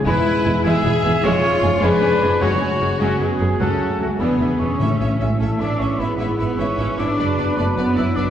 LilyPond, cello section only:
\new Staff \with { instrumentName = "Cello section" } { \clef bass \time 6/8 \key fis \minor \tempo 4. = 102 << { r2. | r2. | r2. | r4 gis8 b4 cis'8~ |
\key a \major cis'4 gis8 a8 d'8 cis'8 | b8 b8 b8 cis'4 d'8~ | d'4 a8 b8 e'8 d'8 | } \\ { e,8 r8 e,8 e,8 e,8 e,8 | eis,8 r8 eis,8 eis,8 eis,8 eis,8 | fis,8 r8 fis,8 fis,8 fis,8 fis,8 | cis,8 r8 cis,8 e,8 e,8 e,8 |
r2. | r2. | r2. | } >> }